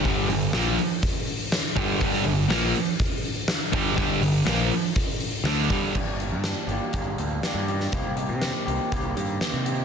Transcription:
<<
  \new Staff \with { instrumentName = "Clean electric guitar" } { \time 4/4 \key g \minor \tempo 4 = 122 r1 | r1 | r1 | <g, d g bes d' g'>8 <g bes d' g'>4 <g bes d' g'>8 <g, d g bes d' g'>8 <g bes d' g'>8 <g bes d' g'>8 <g bes d' g'>8 |
<c ees bes c' g'>8 <bes c' g'>4 <bes c' g'>8 <c ees bes c' g'>8 <bes c' g'>8 <ees bes c' g'>8 <bes c' g'>8 | }
  \new Staff \with { instrumentName = "Distorted electric guitar" } { \clef bass \time 4/4 \key g \minor <g, d g>8 <g, d>8 <bes, f bes>8 r2 <g, d g>8 | <g, d g>8 <g, d>8 <bes, f bes>8 r2 <g, d g>8 | <g, d g>8 <g, d>8 <bes, f bes>8 r4. <d a d'>8 <g, d g>8 | r1 |
r1 | }
  \new Staff \with { instrumentName = "Overdriven electric guitar" } { \clef bass \time 4/4 \key g \minor <g, d g>8 <g, d>8 <bes, f bes>8 r2 <g, d g>8 | <g, d g>8 <g, d>8 <bes, f bes>8 r2 <g, d g>8 | <g, d g>8 <g, d>8 <bes, f bes>8 r4. <d a d'>8 <g, d g>8 | r1 |
r1 | }
  \new Staff \with { instrumentName = "Picked electric bass" } { \clef bass \time 4/4 \key g \minor g,,8 g,,8 bes,,8 r2 g,,8 | g,,8 g,,8 bes,,8 r2 g,,8 | g,,8 g,,8 bes,,8 r4. d,8 g,,8 | g,,16 g,,8 g,8 r16 g,,16 r16 g,,8 d,8 r16 g,8. |
c,16 c,8 c8 r16 c,16 r16 c,8 g,8 r16 c8. | }
  \new DrumStaff \with { instrumentName = "Drums" } \drummode { \time 4/4 <hho bd>8 hho8 sn8 hho8 <hho bd>8 hho8 <hho sn>8 <hho bd>8 | <hho bd>16 sn16 hho8 <hho sn>8 hho8 <hho bd>8 hho8 <hho sn>8 bd8 | <hho bd>8 hho8 <hho sn>8 hho8 <hho bd>8 hho8 sn8 <hho bd>8 | <cymc bd>8 hh8 <hh sn>8 hh8 <hh bd>8 hh8 <hh sn>8 hh16 sn16 |
<hh bd>8 hh8 <hh sn>8 hh8 <hh bd>8 hh8 <hh sn>8 hh8 | }
>>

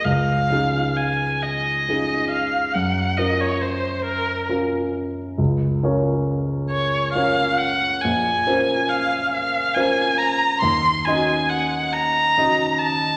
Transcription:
<<
  \new Staff \with { instrumentName = "Violin" } { \time 6/8 \key des \major \tempo 4. = 46 f''4 aes''8 ees''4 f''8 | ges''8 ees''16 des''16 c''8 bes'8 r4 | r4. des''8 f''8 ges''8 | aes''4 f''8 f''8 aes''8 bes''8 |
c'''8 aes''8 ges''8 bes''4 a''8 | }
  \new Staff \with { instrumentName = "Grand piano" } { \time 6/8 \key des \major des,8 <des' ees' f' aes'>4. <des' ees' f' aes'>4 | ges,8 <des' f' bes'>4. <des' f' bes'>4 | des,8 <des' f' bes' des''>4. <des' f' bes' des''>4 | bes,,8 <des' f' bes' c''>4. <des' f' bes' c''>4 |
ees,8 <des' ees' ges' ees''>4. <des' ees' ges' ees''>4 | }
>>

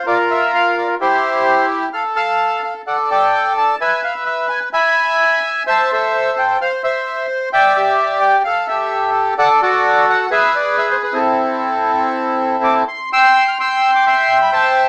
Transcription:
\new Staff \with { instrumentName = "Bandoneon" } { \time 4/4 \key a \minor \tempo 4 = 129 << { d''8 e''8 f''8 d''8 c''4. r8 | f''8 a''4 f''8 fis''8 g''4 a''8 | gis''8 f''8 e''8 gis''8 b''4. r8 | a''8 e''4 g''8 f''8 e''4 r8 |
g''8 e''4 g''8 f''8 e''4 r8 | fis''8 d''4 fis''8 e''8 d''8 e''16 c''16 b'16 a'16~ | a'2. d'''8 c'''8 | \key c \major e'''8. f'''16 e'''8. d'''16 c'''8. b''16 a''8. r16 | } \\ { <f' bes'>2 <e' g'>2 | a'8 f''4. <a' d''>8 d''4. | <b' e''>2 <e'' gis''>2 | <c'' e''>8 <a' c''>4. c''8 c''4. |
<d'' e''>8 g'4. a'8 <g' a'>4. | <a' d''>8 <fis' a'>4. <gis' b'>4.~ <gis' b'>16 <c' e'>16~ | <c' e'>2.~ <c' e'>8 r8 | <g'' c'''>4 <g'' c'''>4 <e'' g''>4 <c'' e''>4 | } >> }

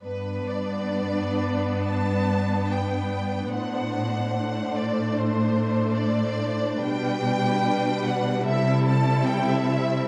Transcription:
<<
  \new Staff \with { instrumentName = "Violin section" } { \time 4/4 \key g \major \tempo 4 = 72 b'8 d''4. a''4 g''4 | fis''4. d''8 c''4 d''4 | g''4. fis''8 e''8 a''8 g''16 e''8. | }
  \new Staff \with { instrumentName = "Violin section" } { \time 4/4 \key g \major << { b'1 | c''1 | b'2 a'2 | } \\ { d'1 | d'1~ | d'2 e'2 | } >> }
  \new Staff \with { instrumentName = "Viola section" } { \time 4/4 \key g \major << { d'1 | d'1~ | d'2 c'2 | } \\ { b1~ | b4 a2. | g1 | } >> }
  \new Staff \with { instrumentName = "Cello section" } { \clef bass \time 4/4 \key g \major g,1 | a,1 | b,2 c2 | }
>>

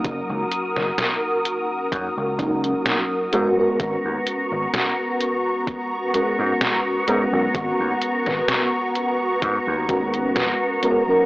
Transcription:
<<
  \new Staff \with { instrumentName = "String machine" } { \time 4/4 \key gis \minor \tempo 4 = 64 <fis' ais' dis'''>2.~ <fis' ais' dis'''>8 <b ais'' cis'''>8~ | <b ais'' cis'''>1~ | <b ais'' cis'''>1 | }
  \new Staff \with { instrumentName = "FM electric piano" } { \time 4/4 \key gis \minor <fis ais cis' dis' ais'>2~ <fis ais cis' dis' ais'>8 <fis ais cis' dis' ais'>4 <gis b cis' fis' ais'>16 <gis b cis' fis' ais'>16~ | <gis b cis' fis' ais'>2~ <gis b cis' fis' ais'>8 <gis b cis' fis' ais'>4 <gis b cis' fis' ais'>16 <gis b cis' fis' ais'>16~ | <gis b cis' fis' ais'>2~ <gis b cis' fis' ais'>8 <gis b cis' fis' ais'>4 <gis b cis' fis' ais'>16 <fis ais cis' dis' ais'>16 | }
  \new Staff \with { instrumentName = "Slap bass" } { \clef bass \time 4/4 \key gis \minor fis,,16 cis,16 r16 fis,,16 r4 fis,16 cis,8 r8. gis,16 r16 | gis,,16 dis,16 r16 gis,,16 r4. r16 gis,16 r8 gis,16 b,,16 | gis,,16 dis,16 r16 gis,,16 r4 gis,16 dis,8. eis,16 r8. | }
  \new DrumStaff \with { instrumentName = "Drums" } \drummode { \time 4/4 <hh bd>8 hh16 sn16 <hh sn>8 hh8 <hh bd>8 <hh bd>16 hh16 <hh sn>8 hh8 | <hh bd>8 hh8 <hh sn>8 hh8 <hh bd>8 hh8 <hh sn>8 hh8 | <hh bd>8 hh16 sn16 <hh sn>8 hh8 <hh bd>8 <hh bd>16 hh16 <hh sn>8 hh8 | }
>>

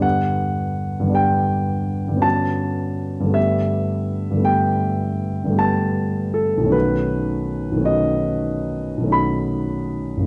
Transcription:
<<
  \new Staff \with { instrumentName = "Grand piano" } { \time 9/8 \key g \lydian \tempo 4. = 53 fis''4. g''4. a''4. | e''4. g''4. a''4 a'8 | b'4. dis''4. b''4. | }
  \new Staff \with { instrumentName = "Grand piano" } { \time 9/8 \key g \lydian <g, d b d' g'>4. <g, d b d' g'>4. <g, d b cis' fis'>4. | <g, d a b g'>4. <g, d a b g'>4. <g, d a b g'>4. | <b,, dis a cis' fis'>4. <b,, dis a cis' fis'>4. <b,, dis a cis' fis'>4. | }
>>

